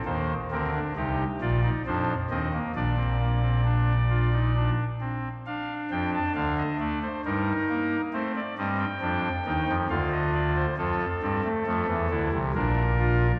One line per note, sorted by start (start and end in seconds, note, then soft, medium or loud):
0.05 0.34 D#2 medium
0.05 0.34 D#3 medium
0.05 0.33 A#3 soft
0.05 0.34 C5 medium
0.51 0.79 D2 medium
0.51 0.79 D3 medium
0.51 0.70 C4 medium
0.51 0.79 A#4 medium
0.74 0.93 D4 medium
0.96 1.24 C2 medium
0.96 1.24 C3 medium
0.96 1.24 D#4 medium
0.96 1.24 G4 medium
1.41 1.69 A#1 medium
1.41 1.69 A#2 medium
1.41 1.60 F4 medium
1.41 1.69 D5 medium
1.63 1.83 D#4 medium
1.86 2.14 F2 medium
1.86 2.14 F3 medium
1.86 2.14 D4 medium
1.86 2.14 C5 medium
2.30 2.58 D#2 medium
2.30 2.58 D#3 medium
2.30 2.50 C4 medium
2.30 2.58 D#5 medium
2.53 2.72 A#3 medium
2.75 4.70 A#1 medium
2.75 4.70 A#2 medium
2.75 2.95 D4 medium
2.75 4.70 D5 medium
2.98 3.17 C4 soft
3.20 3.39 A#3 soft
3.42 3.62 C4 soft
3.64 3.93 D4 soft
4.10 4.29 F4 soft
4.33 4.52 D#4 soft
4.56 4.84 D4 soft
5.01 5.29 C4 soft
5.46 6.99 D4 medium
5.46 5.74 F5 medium
5.91 6.18 F2 medium
5.91 6.18 F3 medium
5.91 6.10 G5 medium
6.14 6.32 A5 medium
6.35 6.63 D2 medium
6.35 6.63 D3 medium
6.35 6.54 F5 medium
6.57 6.76 D#5 medium
6.79 7.07 A3 medium
6.79 6.99 D5 medium
7.02 7.21 C5 medium
7.25 7.52 G2 medium
7.25 7.52 G3 medium
7.25 8.01 D#4 medium
7.25 8.01 A#4 medium
7.69 7.97 A#3 medium
8.13 8.40 A3 medium
8.13 8.40 C4 medium
8.13 8.32 C5 medium
8.35 8.54 D5 medium
8.58 8.85 G2 medium
8.58 8.85 G3 medium
8.58 8.85 C4 medium
8.58 8.77 D#5 medium
8.79 9.75 G5 medium
9.01 9.29 F2 medium
9.01 9.29 F3 medium
9.01 9.29 D4 medium
9.46 9.65 D#2 medium
9.46 9.65 D#3 medium
9.46 9.73 D#4 medium
9.68 9.87 F2 medium
9.68 9.87 F3 medium
9.90 10.65 D2 medium
9.90 10.66 D3 medium
9.90 10.65 F4 medium
9.90 10.09 F5 medium
10.12 10.31 D#5 medium
10.34 10.53 D5 medium
10.56 10.75 C5 medium
10.77 11.05 F2 medium
10.77 11.05 F3 medium
10.77 11.05 F4 medium
10.77 12.30 A4 medium
11.22 11.41 G2 medium
11.22 11.41 G3 medium
11.22 11.50 C4 medium
11.44 11.63 A3 medium
11.67 11.85 F2 medium
11.67 11.85 F3 medium
11.67 11.94 A3 medium
11.88 12.08 E2 medium
11.88 12.07 E3 medium
12.10 12.29 D2 medium
12.10 12.29 D3 medium
12.10 12.38 E4 medium
12.32 12.52 C2 medium
12.32 12.52 C3 medium
12.54 13.31 A#1 medium
12.54 13.31 A#2 medium
12.54 12.82 D4 medium
12.54 13.31 A#4 medium
12.99 13.27 F4 medium